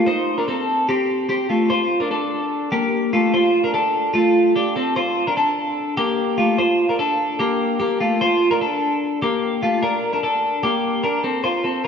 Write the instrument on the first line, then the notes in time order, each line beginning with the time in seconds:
clean electric guitar
0.07 D#4 C5
0.38 D4 A#4
0.48 C4 A4
0.89 C4 G4
1.29 C4 G4
1.49 A3 F4
1.70 F4 C5
2.00 D4 A#4
2.11 D4 A4
2.72 A#3 G4
3.13 A3 F4
3.34 F4 C5
3.64 D4 A#4
3.74 D4 A4
4.14 A3 F4
4.56 D4 G4
4.76 C4 A4
4.96 F4 C5
5.27 D4 A#4
5.37 D4 A4
5.97 A#3 G4
6.38 A3 F4
6.58 F4 C5
6.89 D4 A#4
6.99 D4 A4
7.39 A#3 G4
7.80 A#3 G4
8.00 A3 F4
8.21 F4 C5
8.51 D4 A#4
8.61 D4 A4
9.22 A#3 G4
9.63 A3 F4
9.83 D4 A#4
10.13 D4 A#4
10.23 D4 A4
10.63 A#3 G4
11.04 D4 A#4
11.24 C4 A4
11.44 F4 C5
11.64 C4 A4